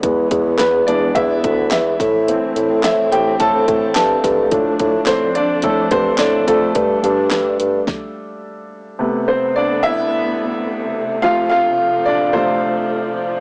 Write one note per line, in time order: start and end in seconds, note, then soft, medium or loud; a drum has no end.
0.03 0.26 E2 medium
0.03 0.41 E3 soft
0.03 4.48 E3 medium
0.03 0.41 G#3 soft
0.03 1.98 G#3 medium
0.03 1.97 B3 medium
0.03 0.41 B3 medium
0.03 kick medium
0.03 closed hi-hat medium
0.31 0.54 E2 medium
0.31 kick medium
0.31 closed hi-hat medium
0.58 0.82 E2 medium
0.58 0.86 B3 medium
0.58 0.88 B4 medium
0.58 snare medium
0.58 clap medium
0.58 closed hi-hat medium
0.87 1.11 E2 medium
0.87 1.12 E3 soft
0.87 1.13 G#3 soft
0.87 1.13 B3 soft
0.87 1.14 D4 medium
0.87 1.16 D5 medium
0.87 closed hi-hat medium
1.15 1.39 E2 medium
1.15 1.68 E4 medium
1.15 1.67 E5 medium
1.15 kick medium
1.15 closed hi-hat medium
1.44 1.67 D2 medium
1.44 kick medium
1.44 closed hi-hat medium
1.71 1.94 E2 medium
1.71 2.24 E4 medium
1.71 2.24 E5 medium
1.71 snare loud
1.71 clap medium
1.71 closed hi-hat medium
2.00 2.46 A2 medium
2.00 7.84 A3 medium
2.00 4.50 C4 medium
2.00 kick loud
2.00 snare soft
2.00 closed hi-hat medium
2.27 2.65 E3 soft
2.27 2.65 A3 soft
2.27 2.65 C4 medium
2.27 closed hi-hat medium
2.56 2.79 A2 medium
2.56 closed hi-hat medium
2.83 3.07 A2 medium
2.83 3.10 E4 medium
2.83 3.13 E5 medium
2.83 snare loud
2.83 clap medium
2.83 closed hi-hat medium
3.12 3.35 A2 medium
3.12 3.37 E3 soft
3.12 3.37 A3 soft
3.12 3.37 C4 soft
3.12 3.38 G4 medium
3.12 3.38 G5 medium
3.12 closed hi-hat medium
3.40 3.63 A2 medium
3.40 3.93 A4 medium
3.40 3.93 A5 medium
3.40 kick medium
3.40 closed hi-hat medium
3.68 3.91 A2 medium
3.68 kick medium
3.68 closed hi-hat medium
3.95 4.19 G2 medium
3.95 4.48 A4 medium
3.95 4.47 A5 medium
3.95 snare loud
3.95 clap medium
3.95 closed hi-hat loud
4.24 4.47 G2 medium
4.24 kick medium
4.24 snare soft
4.24 closed hi-hat medium
4.51 4.75 A2 medium
4.51 6.71 F3 soft
4.51 6.73 F3 medium
4.51 5.64 A3 soft
4.51 6.73 D4 medium
4.51 5.35 D4 medium
4.51 kick medium
4.51 closed hi-hat medium
4.79 5.03 A2 medium
4.79 kick medium
4.79 closed hi-hat medium
5.06 5.31 A2 medium
5.06 5.34 C4 medium
5.06 5.36 C5 medium
5.06 snare medium
5.06 clap medium
5.06 closed hi-hat medium
5.35 5.62 D4 medium
5.35 5.64 D5 medium
5.35 closed hi-hat medium
5.62 5.86 A2 medium
5.62 5.90 A3 medium
5.62 5.92 A4 medium
5.62 kick medium
5.62 closed hi-hat medium
5.91 6.15 G2 medium
5.91 5.99 C4 medium
5.91 5.98 C5 medium
5.91 kick medium
5.91 closed hi-hat medium
6.18 6.43 A2 medium
6.18 6.26 D4 medium
6.18 6.26 D5 medium
6.18 snare loud
6.18 clap medium
6.18 closed hi-hat medium
6.47 6.71 F2 medium
6.47 7.02 A3 medium
6.47 8.39 A4 medium
6.47 kick medium
6.47 snare soft
6.47 closed hi-hat medium
6.75 6.98 G2 medium
6.75 7.87 G3 medium
6.75 7.86 D4 medium
6.75 kick medium
6.75 closed hi-hat medium
7.03 7.27 G2 loud
7.03 8.95 G3 soft
7.03 8.95 A3 soft
7.03 8.95 D4 medium
7.03 closed hi-hat medium
7.31 7.54 G2 medium
7.31 snare medium
7.31 clap medium
7.31 closed hi-hat medium
7.60 7.83 G2 medium
7.60 closed hi-hat medium
7.87 kick medium
7.87 snare medium
8.99 9.36 C3 medium
8.99 13.40 C3 medium
8.99 9.37 A3 soft
8.99 13.40 A3 medium
8.99 11.21 B3 medium
8.99 9.37 B3 medium
9.28 9.54 C4 medium
9.28 9.56 C5 medium
9.56 9.82 D4 medium
9.56 9.82 D5 medium
9.83 11.20 E4 medium
9.83 11.19 E5 loud
11.22 11.60 C3 medium
11.22 13.40 F3 medium
11.22 11.60 F3 medium
11.22 11.61 A3 medium
11.22 11.50 F4 medium
11.22 11.48 F5 loud
11.50 12.03 F4 medium
11.50 12.02 F5 medium
12.05 12.33 D4 medium
12.05 12.35 D5 medium
12.33 12.60 C3 soft
12.33 12.60 F3 soft
12.33 12.60 A3 medium
12.33 13.15 C4 medium
12.33 13.14 C5 medium